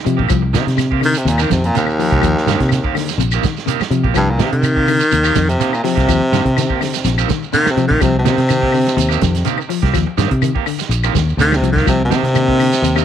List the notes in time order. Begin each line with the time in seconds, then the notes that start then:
0.04 C3 F3, muted clean electric guitar stroke, closed hi-hat, shekere
0.17 A#1 A#3 C4 G4, kick
0.29 C2 F3, kick, closed hi-hat, claves, shekere
0.42 muted clean electric guitar stroke
0.53 C3 D#3 A#3 C4 G4, snare, closed hi-hat, shekere
0.66 C3, muted clean electric guitar stroke, snare, closed hi-hat
0.77 C3, snare, closed hi-hat, claves, shekere
0.91 A#3 C4 G4, kick
1.01 D3, muted clean electric guitar stroke, open hi-hat, claves, shekere
1.05 D#3
1.14 C3, muted clean electric guitar stroke, closed hi-hat, shekere
1.25 D#2 A#2 C3, muted clean electric guitar stroke, closed hi-hat, shekere
1.38 D#3 A#3 C4 G4, claves, shekere
1.50 F2 C3 D#3, muted clean electric guitar stroke, kick, snare, closed hi-hat, shekere
1.64 A#2, closed hi-hat, shekere
1.74 D#2 C3 D#3 A#3 C4 G4, closed hi-hat, shekere
1.86 muted clean electric guitar stroke, claves, shekere
1.98 F3, muted clean electric guitar stroke, open hi-hat, shekere
2.10 C2 A#3 C4 G4, kick, closed hi-hat
2.21 D#2 F3, kick, closed hi-hat, claves, shekere
2.36 muted clean electric guitar stroke, snare
2.46 G2 D#3 A#3 C4 G4, snare, closed hi-hat, shekere
2.60 C3, muted clean electric guitar stroke, kick, snare, closed hi-hat
2.69 muted clean electric guitar stroke, snare, closed hi-hat, claves, shekere
2.84 A#3 C4 G4, kick
2.94 D3, muted clean electric guitar stroke, snare, open hi-hat, claves, shekere
3.08 muted clean electric guitar stroke, snare, closed hi-hat, shekere
3.18 A#1 C3, muted clean electric guitar stroke, closed hi-hat, shekere
3.31 D#3 A#3 C4 G4, claves, shekere
3.42 D#3, muted clean electric guitar stroke, kick, snare, closed hi-hat, shekere
3.57 snare, shekere
3.66 C3 D#3 A#3 C4 G4, closed hi-hat, shekere
3.80 muted fingered electric bass stroke, muted clean electric guitar stroke, snare, claves, shekere
3.90 C3 F3, muted clean electric guitar stroke, closed hi-hat, shekere
4.04 A#1 A#3 C4 G4, kick
4.14 C2 G2 F3, kick, closed hi-hat, claves, shekere
4.28 A#2, muted clean electric guitar stroke
4.38 C3 D#3 A#3 C4 G4, snare, closed hi-hat, shekere
4.52 C3 D#3, muted clean electric guitar stroke, closed hi-hat
4.62 muted clean electric guitar stroke, closed hi-hat, claves, shekere
4.76 A#3 C4 G4, kick
4.87 D3, muted clean electric guitar stroke, open hi-hat, claves, shekere
5.00 muted clean electric guitar stroke, closed hi-hat, shekere
5.11 D#2 C3, muted clean electric guitar stroke, closed hi-hat, shekere
5.23 D#3 A#3 C4 G4, claves, shekere
5.35 F2 D#3, muted clean electric guitar stroke, kick, snare, closed hi-hat, shekere
5.49 C3, closed hi-hat, shekere
5.60 D#3 A#3 C4 G4, muted clean electric guitar stroke, closed hi-hat, shekere
5.72 A#2, muted clean electric guitar stroke, claves, shekere
5.83 C3 F3, muted clean electric guitar stroke, snare, open hi-hat, shekere
5.95 C2 A#3 C4 G4, kick, snare, closed hi-hat
6.08 D#2 F3, kick, closed hi-hat, claves, shekere
6.21 muted clean electric guitar stroke
6.32 G2 D#3 A#3 C4 G4, snare, closed hi-hat, shekere
6.44 C3, muted clean electric guitar stroke, kick, closed hi-hat
6.57 D#3, snare, closed hi-hat, claves, shekere
6.69 A#3 C4 G4, kick
6.81 D3, muted clean electric guitar stroke, snare, open hi-hat, claves, shekere
6.94 muted clean electric guitar stroke, snare, closed hi-hat, shekere
7.04 A#1 C3, muted clean electric guitar stroke, snare, closed hi-hat, shekere
7.18 D#3 A#3 C4 G4, claves, shekere
7.28 D#3, muted clean electric guitar stroke, kick, snare, closed hi-hat, shekere
7.43 shekere
7.53 C3 D#3 A#3 C4 G4, closed hi-hat, shekere
7.65 muted fingered electric bass stroke, muted clean electric guitar stroke, snare, claves, shekere
7.71 C3
7.77 C3 F3, muted clean electric guitar stroke, closed hi-hat, shekere
7.88 A#1 D#3 A#3 C4 G4, kick
8.01 C2 C3 F3, kick, closed hi-hat, claves, shekere
8.14 muted clean electric guitar stroke
8.19 C3
8.25 C3 D#3 A#3 C4 G4, snare, closed hi-hat, shekere
8.37 C3, muted clean electric guitar stroke, snare, closed hi-hat
8.49 D#3, closed hi-hat, claves, shekere
8.62 A#3 C4 G4, kick
8.72 D3, muted clean electric guitar stroke, open hi-hat, claves, shekere
8.86 muted clean electric guitar stroke, snare, closed hi-hat, shekere
8.97 D#2 C3, muted clean electric guitar stroke, closed hi-hat, shekere
9.09 D#3 A#3 C4 G4, claves, shekere
9.21 F2 D#3, muted clean electric guitar stroke, kick, snare, closed hi-hat, shekere
9.35 snare, closed hi-hat, shekere
9.45 C3 D#3 A#3 C4 G4, closed hi-hat, shekere
9.58 muted clean electric guitar stroke, claves, shekere
9.69 F3, muted clean electric guitar stroke, open hi-hat, shekere
9.82 C2 A#3 C4 G4, kick, snare, closed hi-hat
9.94 D#2 F3, kick, snare, closed hi-hat, claves, shekere
10.07 muted clean electric guitar stroke
10.17 G2 D#3 A#3 C4 G4, snare, closed hi-hat, shekere
10.30 C3, muted clean electric guitar stroke, kick, closed hi-hat
10.42 D#3, closed hi-hat, claves, shekere
10.55 A#3 C4 G4, kick
10.65 D3, muted clean electric guitar stroke, open hi-hat, claves, shekere
10.79 muted clean electric guitar stroke, snare, closed hi-hat, shekere
10.89 A#1, muted clean electric guitar stroke, closed hi-hat, shekere
11.04 D#3 A#3 C4 G4, claves, shekere
11.14 D#2 D#3, muted clean electric guitar stroke, kick, snare, closed hi-hat, shekere
11.29 shekere
11.37 D2 C3 D#3 A#3 C4 G4, closed hi-hat, shekere
11.52 C3, muted clean electric guitar stroke, snare, claves, shekere
11.62 C2 F3, muted clean electric guitar stroke, closed hi-hat, shekere
11.72 D#3 G4, kick
11.77 A#3 C4, snare
11.86 C2 C3 F3, kick, closed hi-hat, claves, shekere
12.00 muted clean electric guitar stroke
12.05 C3
12.10 C3 D#3 A#3 C4 G4, snare, closed hi-hat, shekere
12.23 C3, muted clean electric guitar stroke, snare, closed hi-hat
12.33 D#3 A#3 D4 D#4 G4, closed hi-hat, claves, shekere
12.47 A#3 C4 G4, kick
12.59 D3, muted clean electric guitar stroke, open hi-hat, claves, shekere
12.72 muted clean electric guitar stroke, snare, closed hi-hat, shekere
12.82 D#2 C3, muted clean electric guitar stroke, closed hi-hat, shekere
12.95 D#3 A#3 C4 D4 D#4 G4, claves, shekere